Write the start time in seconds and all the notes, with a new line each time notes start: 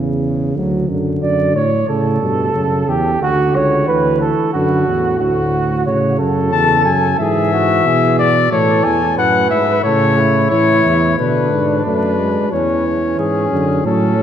Already playing: E2 C#3
0.56 D2 F#3
0.89 F#2 D3
1.22 F#2 D5
1.55 A2 C#5
1.88 A2 C#3 A4
2.22 G2 B2
2.54 F#2 C#3
2.87 E2 G4
3.20 D2 D3 F#4
3.54 C#2 C#5
3.87 D2 E3 B4
4.21 A4
4.54 F#2 D3 F#4
4.87 E2 A2
5.20 D2 F#4
5.86 A2 C#3 C#5
6.19 F#2 A4
6.52 E2 C#3 A5
6.85 F#2 G#5
7.18 G#2 E3 G#4 E5
7.53 F#4
7.85 B2 G#4
8.19 D5
8.52 A2 E3 A4 C#5
8.84 E2 G#5
9.17 F#2 A2 B4 F#5
9.51 G#2 E5
9.84 A2 C#3 A4 C#5
10.18 E4
10.51 A2 E3 C#5
10.85 E2
11.18 B2 D3 D4 B4
11.52 G#2
11.85 F#2 A3 B4
12.20 G#3
12.52 E2 E3 C#4 C#5
12.86 C#4
13.18 G#2 G#4
13.51 F#2 D3
13.85 A2 F#3 C#4 A4
14.18 F#3